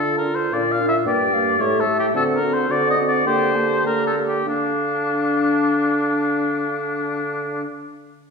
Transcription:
Already playing: bassoon D3, french horn D4, clarinet F4, oboe A4
0.18 oboe A#4
0.25 french horn D4, clarinet F4
0.35 oboe C5
0.52 bassoon A#2, french horn D4, clarinet F4, oboe D5, flute F5
0.72 oboe F5
0.80 french horn D4, clarinet F4
0.89 oboe E5
1.06 bassoon G2, french horn A#3, clarinet G4, oboe D5, flute G5
1.32 french horn A#3, clarinet G4, flute F5
1.59 bassoon A2, french horn A3, clarinet G4, oboe C#5, flute E5
1.80 oboe A4
1.87 french horn A3, clarinet G4
2.00 oboe G4
2.14 bassoon D3, french horn C4, clarinet F#4, oboe A4, flute F#5
2.36 oboe A#4
2.41 french horn C4, clarinet F#4
2.54 oboe C5
2.69 bassoon D3, french horn C4, clarinet F#4, oboe D5, flute F#5
2.91 oboe D#5
2.98 french horn C4, clarinet F#4
3.08 oboe D5
3.26 bassoon D3, french horn A#3, clarinet G4, oboe C5, flute G5
3.55 french horn A#3, clarinet G4, flute A5
3.85 bassoon D3, french horn A#3, clarinet G4, oboe A#4, flute A#5
4.07 oboe A4
4.15 french horn A#3, clarinet G4
4.28 oboe G4
4.46 bassoon D3, clarinet D4, french horn D4, oboe D4, flute F5

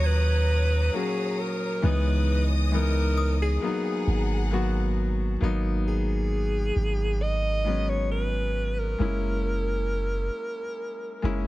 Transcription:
Already playing: 808-style bass D#2, grand piano A#2 F#3 A#3 C#4 D#4 F#4, string section C#5 A#5 D#6, synth bell F#6 A#6
0.04 alto saxophone B4, synth bell G#6
0.93 grand piano F#3 A#3 C#4 F#4, alto saxophone G#4
1.40 alto saxophone A#4
1.82 808-style bass C#2, grand piano E3 G#3 B3 D#4, alto saxophone B4, string section D#5 D#6
2.72 grand piano E3 G#3 B3 D#4, alto saxophone A#4
3.18 synth bell D#6
3.42 alto saxophone G#4
3.61 grand piano F#3 A#3 B3 D#4, string section G#4 F#5 A#5
4.07 808-style bass G#1
4.51 grand piano F#3 A#3 B3 F#4
5.41 808-style bass G#1, grand piano F#3 A#3 B3 D#4
5.88 alto saxophone G#4
6.76 808-style bass G#1
7.22 alto saxophone D#5
7.64 grand piano F#3 G#3 B3 C#4
7.89 alto saxophone C#5
8.11 alto saxophone B4
8.79 alto saxophone A#4
8.98 808-style bass F#1, grand piano G#3 A#3 C#4 E4
11.22 808-style bass F#1, grand piano G#3 A#3 C#4 E4

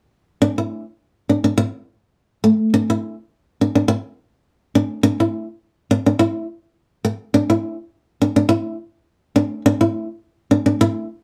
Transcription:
0.42 nylon-string guitar D4
0.58 nylon-string guitar E4
1.29 nylon-string guitar D4
1.44 nylon-string guitar D4
1.58 muted nylon-string guitar stroke
2.44 nylon-string guitar A3
2.74 nylon-string guitar D4
2.90 nylon-string guitar E4
3.61 nylon-string guitar D4
3.75 nylon-string guitar D4
3.88 muted nylon-string guitar stroke
4.75 nylon-string guitar D4
5.03 nylon-string guitar D4
5.20 nylon-string guitar E4
5.91 muted nylon-string guitar stroke
6.06 nylon-string guitar D4
6.19 nylon-string guitar E4
7.05 muted nylon-string guitar stroke
7.34 nylon-string guitar D4
7.50 nylon-string guitar E4
8.22 nylon-string guitar D4
8.36 nylon-string guitar D4
8.49 nylon-string guitar E4
9.36 nylon-string guitar D4
9.66 nylon-string guitar D4
9.81 nylon-string guitar E4
10.51 nylon-string guitar D4
10.66 nylon-string guitar D4
10.81 nylon-string guitar E4

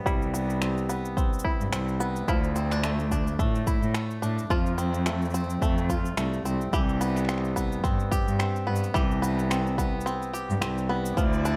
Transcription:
Already playing: five-string banjo B3 C4
0.06 cello C2, five-string banjo G3 E4, kick, shaker
0.22 shaker
0.34 five-string banjo B3, shaker
0.50 shaker
0.62 five-string banjo C4, finger snap, shaker
0.78 shaker
0.89 five-string banjo B3, shaker
1.05 shaker
1.17 five-string banjo C4, kick, shaker
1.33 shaker
1.39 shaker
1.44 five-string banjo E4, kick
1.60 cello G2, shaker
1.72 cello C2, five-string banjo C4, finger snap, shaker
1.88 shaker
2.00 five-string banjo B3, shaker
2.16 shaker
2.28 cello D2, five-string banjo F3 E4, kick, shaker
2.44 shaker
2.56 five-string banjo C4, shaker
2.71 five-string banjo D4, finger snap, shaker
2.84 five-string banjo A3, finger snap, shaker
2.99 shaker
3.11 five-string banjo D4, kick, shaker
3.27 shaker
3.39 cello A2, five-string banjo A3, kick, shaker
3.55 shaker
3.67 five-string banjo E4, kick, shaker
3.82 cello A2, shaker
3.94 five-string banjo A3, finger snap, shaker
4.11 shaker
4.22 cello A2, five-string banjo D4, shaker
4.39 shaker
4.50 cello F2, five-string banjo F3 F4, kick, shaker
4.66 shaker
4.78 five-string banjo C4, shaker
4.94 shaker
5.06 five-string banjo A3, finger snap, shaker
5.22 shaker
5.25 shaker
5.30 shaker
5.34 five-string banjo C4, shaker
5.44 shaker
5.50 shaker
5.62 cello F2, five-string banjo A3, kick, shaker
5.78 shaker
5.89 five-string banjo F4, kick, shaker
6.05 shaker
6.17 cello C2, five-string banjo A3, finger snap, shaker
6.33 shaker
6.45 cello C2, five-string banjo C4, shaker
6.61 shaker
6.73 cello C2, five-string banjo E3 G4, kick, shaker
6.89 shaker
7.01 five-string banjo B3, shaker
7.16 finger snap, shaker
7.19 finger snap
7.25 five-string banjo C4, finger snap
7.29 finger snap, shaker
7.34 finger snap
7.38 finger snap
7.45 shaker
7.56 five-string banjo B3, kick, shaker
7.72 shaker
7.84 cello G2, five-string banjo C4, kick, shaker
8.00 shaker
8.11 five-string banjo G4, kick, shaker
8.27 cello G2, shaker
8.39 five-string banjo C4, finger snap, shaker
8.56 shaker
8.67 cello G2, five-string banjo B3
8.76 shaker
8.84 shaker
8.94 cello C2, five-string banjo E3 G4, kick, shaker
9.11 shaker
9.22 five-string banjo B3, shaker
9.39 shaker
9.50 five-string banjo C4, finger snap, shaker
9.67 shaker
9.78 five-string banjo B3, kick, shaker
10.01 shaker
10.06 five-string banjo C4, shaker
10.22 shaker
10.33 five-string banjo G4, shaker
10.50 cello G2, shaker
10.61 cello C2, five-string banjo C4, finger snap, shaker
10.78 shaker
10.89 five-string banjo B3
11.06 shaker
11.17 cello D2, five-string banjo F3, string quartet E4 D5, kick, shaker
11.33 shaker
11.45 five-string banjo D4, shaker

